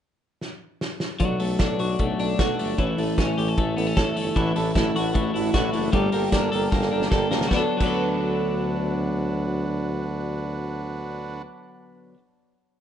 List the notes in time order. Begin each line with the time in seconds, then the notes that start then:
0.41 snare
0.81 snare
1.00 snare
1.19 B1 B2 F#3 A3 D4, kick, closed hi-hat
1.39 B1 A3 D4, open hi-hat
1.59 B1 B2 F#3 A3 D4, kick, snare, closed hi-hat
1.78 B1 F#3 A3 D4 F#4, open hi-hat
1.99 B1 A3, kick, closed hi-hat
2.18 B1 F#3 A3 D4, open hi-hat
2.38 B1 B2 F#3 A3 D4 F#4, kick, snare, closed hi-hat
2.58 G1 F#3 A3 D4, open hi-hat
2.77 A1 A2 E3 A3 C#4 E4, kick, closed hi-hat
2.97 A1 A3 C#4 E4, open hi-hat
3.18 A1 A2 E3 A3 C#4 E4, kick, snare, closed hi-hat
3.37 A1 A3 C#4 E4 G4, open hi-hat
3.48 A4
3.58 A1 A3, kick, closed hi-hat
3.76 A1 A3 B3 C#4 E4, open hi-hat
3.87 C#4
3.96 A1 A2 E3 A3 C#4 E4 A4, kick, snare, closed hi-hat
4.16 G1 A3 C#4 E4, open hi-hat
4.36 A1 A2 D3 E3 A3 D4 E4 F#4, kick, closed hi-hat
4.55 A1 E3 A3 D4 E4 F#4 A4, open hi-hat
4.75 A1 A2 D3 E3 A3 D4 E4 F#4 A4, kick, snare, closed hi-hat
4.95 A1 E3 A3 D4 E4 F#4 A4, open hi-hat
5.14 A1 A3 D4 E4 F#4, kick, closed hi-hat
5.34 A1 E3 A3 D4 E4 F#4 A4, open hi-hat
5.53 A1 A2 D3 E3 A3 D4 E4 F#4, kick, snare, closed hi-hat
5.73 F#1 E3 A3 D4 E4 F#4, open hi-hat
5.93 G1 G2 D3 G3 A#3 D4 G4 A4, kick, closed hi-hat
6.12 G1 G3 A#3 D4 G4 A4, open hi-hat
6.32 G1 G2 D3 G3 A#3 D4 G4 A4 A#4, kick, snare, closed hi-hat
6.53 G1 G3 A#3 D4 G4 A4 A#4, open hi-hat
6.71 G1 A#3 G4 A4, kick, snare
6.81 snare
6.92 G1 G3 A#3 D4 G4 A4 A#4
7.02 snare
7.11 G1 G2 D3 G3 A#3 D4 G4 A4, kick, snare
7.31 C#2 G3 A#3 D4 G4 A4, snare
7.41 snare
7.47 D3 F#3, kick, snare
7.51 D2 F#3 B3 D4 F#4 B4
7.57 F#4 A4
7.77 D2 D3 F#3, kick, crash
7.81 F#3 B3 D4 F#4 B4
7.87 A4